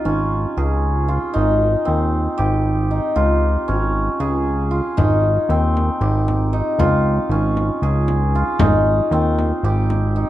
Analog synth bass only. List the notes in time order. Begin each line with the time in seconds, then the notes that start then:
0.05 G#1
0.57 C#2
1.36 G#1
1.88 D#2
2.39 G#1
3.16 C#2
3.69 G#1
4.20 C#2
4.98 G#1
5.49 D#2
6.01 G#1
6.79 C#2
7.29 G#1
7.82 C#2
8.61 G#1
9.11 D#2
9.63 G#1